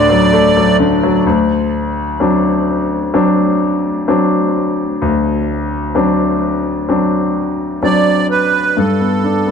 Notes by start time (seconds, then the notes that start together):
Already playing: D2 A2 D3 D5
0.10 F#3
0.33 A3
0.57 F#3
0.80 D3
1.03 F#3
1.27 D2
2.20 F#3 C4 D4
3.14 F#3 C4 D4
4.08 F#3 C4 D4
5.02 D2
5.95 F#3 C4 D4
6.89 F#3 C4 D4
7.83 F#3 C4 D4 D5
8.30 B4
8.77 G2 A4
9.01 B3
9.24 D4
9.47 B3